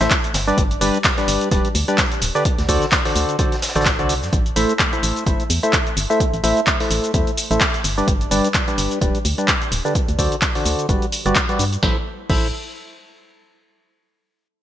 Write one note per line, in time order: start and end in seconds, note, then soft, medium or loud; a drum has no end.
0.01 0.08 A1 medium
0.01 0.16 A3 medium
0.01 0.16 E4 medium
0.01 0.16 A4 medium
0.01 0.16 C5 medium
0.01 0.16 E5 medium
0.01 snare loud
0.01 closed hi-hat soft
0.01 closed hi-hat medium
0.01 shaker soft
0.11 kick loud
0.11 clap loud
0.11 closed hi-hat medium
0.11 shaker soft
0.24 closed hi-hat medium
0.24 closed hi-hat soft
0.24 shaker soft
0.34 0.52 G1 medium
0.34 snare loud
0.34 closed hi-hat medium
0.34 open hi-hat loud
0.34 shaker medium
0.48 0.63 G3 medium
0.48 0.63 D4 medium
0.48 0.63 G4 medium
0.48 0.63 B4 medium
0.48 0.63 D5 medium
0.48 shaker soft
0.58 0.76 G1 loud
0.58 kick loud
0.58 closed hi-hat medium
0.58 shaker soft
0.71 closed hi-hat soft
0.71 shaker soft
0.81 0.91 G1 medium
0.81 0.98 G3 medium
0.81 0.98 D4 medium
0.81 0.98 G4 medium
0.81 0.98 B4 medium
0.81 0.98 D5 loud
0.81 closed hi-hat medium
0.81 open hi-hat loud
0.81 shaker medium
0.94 closed hi-hat soft
0.94 shaker soft
1.04 kick loud
1.04 snare loud
1.04 clap loud
1.04 closed hi-hat medium
1.04 shaker soft
1.18 1.49 G3 medium
1.18 1.49 D4 medium
1.18 1.49 G4 medium
1.18 1.49 B4 medium
1.18 1.49 D5 medium
1.18 snare soft
1.18 closed hi-hat soft
1.18 shaker soft
1.28 1.38 G1 medium
1.28 closed hi-hat medium
1.28 open hi-hat loud
1.28 shaker medium
1.41 closed hi-hat soft
1.41 shaker soft
1.51 1.61 D1 medium
1.51 1.69 G3 medium
1.51 1.69 D4 medium
1.51 1.69 G4 medium
1.51 1.69 B4 medium
1.51 1.69 D5 medium
1.51 kick loud
1.51 closed hi-hat medium
1.51 closed hi-hat loud
1.51 shaker soft
1.65 closed hi-hat soft
1.65 shaker soft
1.75 1.85 D2 medium
1.75 closed hi-hat medium
1.75 open hi-hat loud
1.75 shaker medium
1.88 2.03 G3 medium
1.88 2.03 D4 medium
1.88 2.03 G4 medium
1.88 2.03 B4 medium
1.88 2.03 D5 medium
1.88 closed hi-hat soft
1.88 shaker soft
1.98 kick loud
1.98 snare loud
1.98 clap loud
1.98 closed hi-hat medium
1.98 shaker soft
2.12 closed hi-hat soft
2.12 shaker soft
2.22 2.32 D1 medium
2.22 closed hi-hat medium
2.22 open hi-hat loud
2.22 shaker medium
2.35 2.44 D3 medium
2.35 2.44 D4 medium
2.35 2.44 G4 medium
2.35 2.44 B4 medium
2.35 2.44 D5 medium
2.35 shaker soft
2.45 kick loud
2.45 closed hi-hat medium
2.45 shaker soft
2.58 2.66 D2 medium
2.58 snare soft
2.58 closed hi-hat soft
2.58 shaker soft
2.69 2.78 D2 medium
2.69 2.86 D3 loud
2.69 2.86 F#4 medium
2.69 2.86 A4 medium
2.69 2.86 C5 medium
2.69 2.86 D5 loud
2.69 kick medium
2.69 closed hi-hat medium
2.69 open hi-hat loud
2.69 shaker medium
2.82 snare soft
2.82 closed hi-hat soft
2.82 shaker soft
2.92 kick loud
2.92 snare loud
2.92 clap loud
2.92 closed hi-hat medium
2.92 shaker soft
3.05 3.37 D3 medium
3.05 3.37 F#4 medium
3.05 3.37 A4 medium
3.05 3.37 C5 medium
3.05 3.37 D5 medium
3.05 snare soft
3.05 open hi-hat medium
3.05 shaker soft
3.16 3.25 D2 medium
3.16 closed hi-hat medium
3.16 open hi-hat loud
3.16 shaker medium
3.29 closed hi-hat soft
3.29 shaker soft
3.38 3.56 D3 medium
3.38 3.56 F#4 medium
3.38 3.56 A4 medium
3.38 3.56 C5 medium
3.38 3.56 D5 medium
3.38 kick loud
3.38 closed hi-hat medium
3.38 shaker soft
3.52 snare soft
3.52 closed hi-hat soft
3.52 shaker soft
3.62 snare medium
3.62 closed hi-hat medium
3.62 open hi-hat loud
3.62 shaker medium
3.68 snare medium
3.68 closed hi-hat medium
3.75 4.01 A1 medium
3.75 3.91 D3 medium
3.75 3.91 F#4 medium
3.75 3.91 A4 medium
3.75 3.91 C5 medium
3.75 3.91 D5 loud
3.75 snare medium
3.75 closed hi-hat medium
3.75 closed hi-hat soft
3.75 shaker soft
3.81 snare medium
3.81 closed hi-hat medium
3.85 kick loud
3.85 snare loud
3.85 clap loud
3.85 closed hi-hat medium
3.85 shaker soft
3.99 4.24 C2 medium
3.99 4.14 D3 medium
3.99 4.14 F#4 medium
3.99 4.14 A4 medium
3.99 4.14 C5 medium
3.99 4.14 D5 loud
3.99 closed hi-hat soft
3.99 shaker soft
4.09 closed hi-hat medium
4.09 open hi-hat loud
4.09 shaker medium
4.22 4.30 F#2 medium
4.22 snare soft
4.22 shaker soft
4.33 4.51 A1 loud
4.33 kick loud
4.33 closed hi-hat medium
4.33 shaker soft
4.46 closed hi-hat soft
4.46 shaker soft
4.56 4.66 A1 medium
4.56 4.73 A3 medium
4.56 4.73 E4 medium
4.56 4.73 A4 medium
4.56 4.73 C5 medium
4.56 4.73 E5 loud
4.56 open hi-hat loud
4.56 shaker medium
4.69 closed hi-hat soft
4.69 shaker soft
4.79 kick loud
4.79 clap loud
4.79 closed hi-hat medium
4.79 shaker soft
4.93 5.24 A3 medium
4.93 5.24 E4 medium
4.93 5.24 A4 medium
4.93 5.24 C5 medium
4.93 5.24 E5 medium
4.93 closed hi-hat soft
4.93 shaker soft
5.03 5.13 A1 medium
5.03 open hi-hat loud
5.03 shaker medium
5.16 closed hi-hat soft
5.16 shaker soft
5.26 5.36 G1 medium
5.26 5.44 A3 medium
5.26 5.44 E4 medium
5.26 5.44 A4 medium
5.26 5.44 C5 medium
5.26 5.44 E5 medium
5.26 kick loud
5.26 closed hi-hat medium
5.26 shaker soft
5.40 closed hi-hat soft
5.40 shaker soft
5.50 5.60 E2 medium
5.50 open hi-hat loud
5.50 shaker medium
5.63 5.78 A3 medium
5.63 5.78 E4 medium
5.63 5.78 A4 medium
5.63 5.78 C5 medium
5.63 5.78 E5 medium
5.63 closed hi-hat soft
5.63 shaker soft
5.73 kick loud
5.73 clap loud
5.73 closed hi-hat medium
5.73 shaker soft
5.87 closed hi-hat soft
5.87 shaker soft
5.97 6.07 G1 loud
5.97 open hi-hat loud
5.97 shaker medium
6.10 6.25 A3 medium
6.10 6.25 E4 medium
6.10 6.25 A4 medium
6.10 6.25 C5 medium
6.10 6.25 E5 medium
6.10 shaker soft
6.20 kick loud
6.20 closed hi-hat medium
6.20 shaker soft
6.34 6.41 A1 medium
6.34 closed hi-hat soft
6.34 shaker soft
6.44 6.53 A1 medium
6.44 6.61 A3 medium
6.44 6.61 E4 medium
6.44 6.61 A4 medium
6.44 6.61 C5 medium
6.44 6.61 E5 loud
6.44 open hi-hat loud
6.44 shaker medium
6.57 closed hi-hat soft
6.57 shaker soft
6.67 kick loud
6.67 clap loud
6.67 closed hi-hat medium
6.67 shaker soft
6.80 7.12 A3 medium
6.80 7.12 E4 medium
6.80 7.12 A4 medium
6.80 7.12 C5 medium
6.80 7.12 E5 medium
6.80 open hi-hat medium
6.80 shaker soft
6.91 7.00 A1 medium
6.91 open hi-hat loud
6.91 shaker medium
7.04 closed hi-hat soft
7.04 shaker soft
7.14 7.24 E2 medium
7.14 7.31 A3 medium
7.14 7.31 E4 medium
7.14 7.31 A4 medium
7.14 7.31 C5 medium
7.14 7.31 E5 medium
7.14 kick loud
7.14 closed hi-hat medium
7.14 shaker soft
7.27 closed hi-hat soft
7.27 shaker soft
7.37 open hi-hat loud
7.37 shaker medium
7.51 7.58 A1 loud
7.51 7.66 A3 medium
7.51 7.66 E4 medium
7.51 7.66 A4 medium
7.51 7.66 C5 medium
7.51 7.66 E5 medium
7.51 closed hi-hat soft
7.51 shaker soft
7.61 kick loud
7.61 clap loud
7.61 closed hi-hat medium
7.61 shaker soft
7.74 closed hi-hat soft
7.74 shaker soft
7.84 8.02 G1 medium
7.84 open hi-hat loud
7.84 shaker medium
7.98 8.13 G3 medium
7.98 8.13 D4 medium
7.98 8.13 G4 medium
7.98 8.13 B4 medium
7.98 8.13 D5 medium
7.98 shaker soft
8.08 8.26 G1 loud
8.08 kick loud
8.08 closed hi-hat loud
8.08 shaker soft
8.21 closed hi-hat soft
8.21 shaker soft
8.31 8.41 G1 medium
8.31 8.48 G3 loud
8.31 8.48 D4 medium
8.31 8.48 G4 medium
8.31 8.48 B4 medium
8.31 8.48 D5 loud
8.31 open hi-hat loud
8.31 shaker medium
8.44 closed hi-hat soft
8.44 shaker soft
8.54 kick loud
8.54 clap loud
8.54 closed hi-hat medium
8.54 shaker soft
8.68 8.99 G3 medium
8.68 8.99 D4 medium
8.68 8.99 G4 medium
8.68 8.99 B4 medium
8.68 8.99 D5 medium
8.68 closed hi-hat soft
8.68 shaker soft
8.78 8.88 G1 medium
8.78 open hi-hat loud
8.78 shaker medium
8.91 closed hi-hat soft
8.91 shaker soft
9.01 9.11 D1 medium
9.01 9.19 G3 medium
9.01 9.19 D4 medium
9.01 9.18 G4 medium
9.01 9.19 B4 medium
9.01 9.19 D5 medium
9.01 kick loud
9.01 closed hi-hat medium
9.01 shaker soft
9.15 closed hi-hat soft
9.15 shaker soft
9.25 9.35 D2 medium
9.25 open hi-hat loud
9.25 shaker medium
9.38 9.53 G3 medium
9.38 9.53 D4 medium
9.38 9.53 G4 medium
9.38 9.53 B4 medium
9.38 9.53 D5 medium
9.38 closed hi-hat soft
9.38 shaker soft
9.48 kick loud
9.48 clap loud
9.48 closed hi-hat loud
9.48 shaker soft
9.62 closed hi-hat soft
9.62 shaker soft
9.72 9.82 D1 loud
9.72 open hi-hat loud
9.72 shaker medium
9.85 9.94 D3 medium
9.85 9.94 D4 medium
9.85 9.94 G4 medium
9.85 9.94 B4 medium
9.85 9.94 D5 medium
9.85 shaker soft
9.95 kick loud
9.95 closed hi-hat loud
9.95 shaker soft
10.08 10.16 D2 medium
10.08 closed hi-hat soft
10.08 shaker soft
10.19 10.28 D2 medium
10.19 10.36 D3 medium
10.19 10.36 F#4 medium
10.19 10.36 A4 medium
10.19 10.36 C5 medium
10.19 10.36 D5 loud
10.19 kick medium
10.19 open hi-hat loud
10.19 shaker medium
10.32 closed hi-hat soft
10.32 shaker soft
10.42 kick loud
10.42 clap loud
10.42 closed hi-hat loud
10.42 shaker soft
10.55 10.87 D3 medium
10.55 10.87 F#4 medium
10.55 10.87 A4 medium
10.55 10.87 C5 medium
10.55 10.87 D5 medium
10.55 open hi-hat medium
10.55 shaker soft
10.65 10.75 D2 medium
10.65 open hi-hat loud
10.65 shaker medium
10.79 closed hi-hat soft
10.79 shaker soft
10.89 10.99 G1 medium
10.89 11.06 G3 medium
10.89 11.06 F#4 medium
10.89 11.06 G4 medium
10.89 11.06 B4 medium
10.89 11.06 D5 medium
10.89 kick loud
10.89 closed hi-hat medium
10.89 shaker soft
11.02 closed hi-hat soft
11.02 shaker soft
11.12 open hi-hat loud
11.12 shaker medium
11.26 11.33 G1 medium
11.26 11.41 G3 medium
11.26 11.41 F#4 medium
11.26 11.41 G4 medium
11.26 11.41 B4 medium
11.26 11.41 D5 loud
11.26 closed hi-hat soft
11.26 shaker soft
11.36 kick loud
11.36 clap loud
11.36 closed hi-hat medium
11.36 shaker soft
11.49 11.64 G3 medium
11.49 11.64 F#4 medium
11.49 11.64 G4 medium
11.49 11.64 B4 medium
11.49 11.64 D5 loud
11.49 closed hi-hat soft
11.49 shaker soft
11.59 11.77 G2 medium
11.59 open hi-hat loud
11.59 shaker medium
11.73 closed hi-hat soft
11.73 shaker soft
11.83 11.97 A1 medium
11.83 11.97 E4 medium
11.83 11.97 A4 medium
11.83 11.97 C5 medium
11.83 11.97 E5 medium
11.83 kick loud
11.83 snare medium
12.30 12.51 A1 medium
12.30 12.48 E4 medium
12.30 12.48 A4 medium
12.30 12.48 C5 medium
12.30 12.48 E5 loud
12.30 kick loud
12.30 crash medium